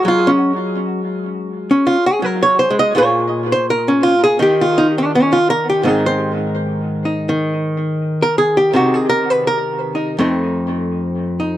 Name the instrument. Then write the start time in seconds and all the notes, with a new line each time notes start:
hollow-body jazz guitar
Already playing: G#3
0.05 F#3 F4
0.27 C#4
1.71 C#4
1.87 F4
2.06 G#4
2.22 F#3 A#4
2.43 C#5
2.59 C5
2.70 G#3
2.79 D#5
2.95 A#2 A#3 F4 G#4 C#5
3.52 C5
3.70 A#4
3.88 C#4
4.03 F4
4.24 G#4
4.39 D#3 D#4 G4
4.61 F4
4.78 D#4
4.98 D4
5.15 C#4
5.33 F4
5.50 A#4
5.70 G4
5.83 G#2 D#3 C4 D#4
5.88 G#4
6.06 C5
7.05 D#4
7.29 D#3
8.22 A#4
8.38 G#4
8.57 G4
8.73 C3 D#3 C4 F#4
8.94 G#4
9.09 A#4
9.30 B4
9.47 A#4
9.95 D#4
10.19 F2 A3 C4 D#4
11.40 D#4